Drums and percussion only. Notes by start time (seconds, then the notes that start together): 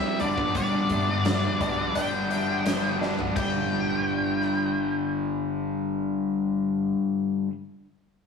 0.19 closed hi-hat
0.38 kick
0.55 kick, closed hi-hat
0.89 kick, closed hi-hat
1.25 snare, closed hi-hat
1.61 kick, closed hi-hat
1.95 closed hi-hat
2.31 closed hi-hat
2.66 snare, closed hi-hat
3.02 snare
3.19 floor tom
3.36 kick, crash
4.42 cross-stick